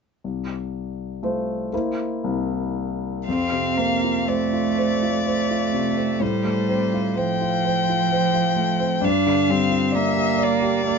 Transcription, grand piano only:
0.24 C2
1.23 A3 F4 C5
1.73 A#3 E4 C5
2.24 C2
3.28 F2
3.52 C3
3.77 C4
4.04 F4
4.28 C5
4.53 F4
4.78 C5
5.02 F4
5.27 C5
5.51 F4
5.73 C3
5.97 C4
6.20 A2
6.45 A3
6.69 C4
6.94 F4
7.17 C5
7.41 F4
7.65 C5
7.90 F4
8.12 C5
8.34 F4
8.56 A3
8.80 C4
9.01 G2
9.26 D3
9.49 G3
9.71 F4
9.92 D5
10.16 G4
10.38 D5
10.62 G4
10.88 D5

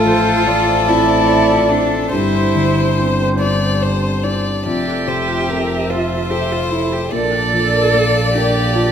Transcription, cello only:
Already playing: F4
0.88 E4
1.71 D4
2.12 E4
4.66 G4
5.90 F4
6.31 G4
6.52 F4
6.71 E4
6.92 G4
7.12 A4
8.34 G4

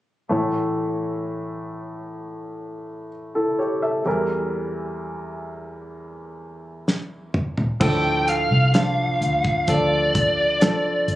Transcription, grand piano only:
0.29 A2 E3 A3 E4 C#5
3.35 E4 A4
3.59 G4 C#5
3.82 A4 E5
4.05 E2 E3 G3 E4 A#4
7.80 A2 F3 D4 A4
8.74 F3 D4 F4
9.67 F3 D4 A4
10.61 F3 D4 A4

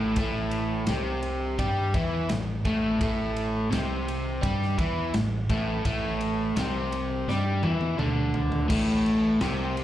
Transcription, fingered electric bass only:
Already playing: A1
0.17 A1
0.89 C2
1.59 G2
1.95 E2
2.31 A1
2.65 A1
3.01 A1
3.72 C2
4.43 G2
4.79 E2
5.15 A1
5.50 A1
5.85 A1
6.57 C2
7.28 G2
7.63 E2
7.99 D2
8.70 A1
9.42 C2

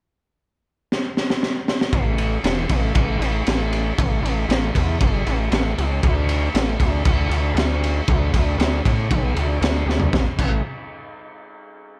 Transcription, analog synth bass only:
1.93 A1
2.44 E1
2.70 A1
2.95 A1
3.19 A1
3.47 A1
3.98 A1
4.22 A1
4.48 A1
4.76 E2
5.01 G1
5.27 A1
5.52 A1
5.78 C#2
6.03 D2
6.54 A1
6.80 D2
7.05 D2
7.29 D2
7.54 D2
8.08 D2
8.33 D2
8.58 D2
8.85 A2
9.11 B1
9.36 D2
9.61 D2
9.86 D2
10.13 A1
10.39 A1

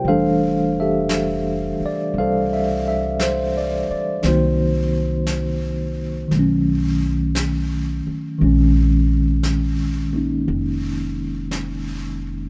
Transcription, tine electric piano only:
Already playing: G4
0.07 E3 G3 A3 D4 A4 C5 F5
0.80 G4 A4 E5
1.86 D5
2.14 G3 C4
2.18 A4 C5 F5
2.53 E5
2.88 E5
3.23 C5
3.57 D5
3.91 D5
4.24 D#3 F#3 A#3 C4 D#4 F#4 C5
6.28 D#3 F#3
6.35 A3 C#4
8.39 D#3 G#3 C4
8.44 C#4
10.13 A#3 C#4 D#4

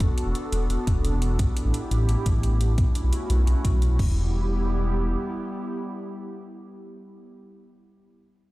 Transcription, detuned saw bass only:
0.00 E1
0.27 E1
0.53 E1
0.70 E1
0.87 E1
1.13 E1
1.39 A1
1.65 A1
1.91 A1
2.09 A1
2.26 A1
2.52 A1
2.78 B1
3.04 B1
3.30 B1
3.47 B1
3.65 B1
3.91 B1
3.99 E1

